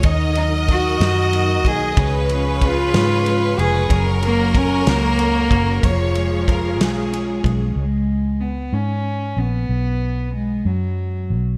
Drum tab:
RD |xxxxxx|xxxxxx|xxxxxx|xxxxxx|
SD |---o--|---o--|---o--|---o--|
BD |o-o--o|o-o---|o-o--o|o-o--o|

RD |------|------|
SD |------|------|
BD |------|------|